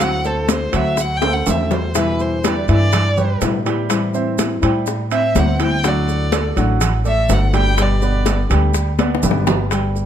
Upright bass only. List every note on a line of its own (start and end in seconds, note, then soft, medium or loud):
0.00 0.67 D2 medium
0.73 1.43 D2 medium
1.47 2.62 E2 medium
2.69 3.38 G2 medium
3.41 4.57 A2 medium
4.63 5.32 A2 medium
5.35 6.50 D2 loud
6.56 7.25 A1 medium
7.29 8.44 G1 medium
8.50 9.19 D2 medium
9.23 10.06 G1 medium